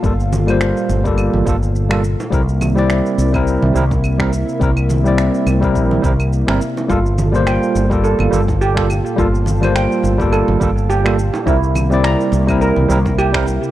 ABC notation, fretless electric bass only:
X:1
M:4/4
L:1/16
Q:"Swing 16ths" 1/4=105
K:Gdor
V:1 name="Fretless electric bass" clef=bass
G,,,4- G,,, z G,,,3 G,,, G,,,4- G,,, z | C,,4- C,, z C,,3 C,, C,,4- C,, z | C,,4- C,, z C,,2 B,,,2 C,,3 G,,, z2 | G,,,4- G,,, z G,,,3 G,,, G,,,4- G,,, z |
G,,,4- G,,, z G,,,3 G,,, G,,,4- G,,, z | C,,4- C,, z C,,3 C,, C,,4- C,, z |]